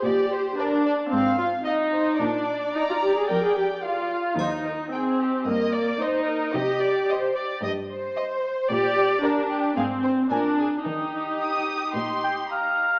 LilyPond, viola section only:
\new Staff \with { instrumentName = "Viola section" } { \time 4/4 \key ees \major \tempo 4 = 111 g'4 d'4 c'8 f'8 ees'4 | d'4 ees'16 f'16 g'16 aes'16 bes'16 aes'16 g'8 f'4 | ees'4 c'4 bes4 ees'4 | g'2 r2 |
g'4 d'4 c'4 d'4 | ees'2.~ ees'8 r8 | }